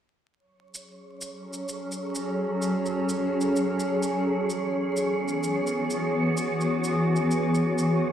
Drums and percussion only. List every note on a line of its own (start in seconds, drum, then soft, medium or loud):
0.75 shaker soft
1.21 shaker medium
1.53 shaker soft
1.69 shaker medium
1.92 shaker soft
2.15 shaker medium
2.62 shaker soft
2.86 shaker soft
3.09 shaker medium
3.41 shaker soft
3.56 shaker medium
3.80 shaker soft
4.03 shaker medium
4.50 shaker soft
4.97 shaker soft
5.28 shaker soft
5.44 shaker medium
5.67 shaker soft
5.91 shaker medium
6.37 shaker soft
6.61 shaker soft
6.84 shaker soft
7.16 shaker soft
7.31 shaker soft
7.55 shaker soft
7.78 shaker soft